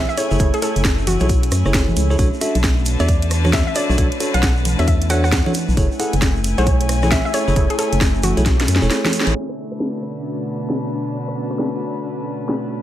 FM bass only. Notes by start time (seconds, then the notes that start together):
0.31 F#1
0.40 F#1
0.76 F#1
1.21 B1
1.52 F#2
1.65 F#1
1.97 C#2
2.19 B1
2.55 B1
3.00 E2
3.90 B1
4.34 B1
4.79 E2
5.69 B1
5.77 F#1
6.13 F#1
6.58 B1
7.48 F#1
7.56 F#1
7.93 F#1
8.37 B1
8.68 F#2
8.82 E1
9.27 A1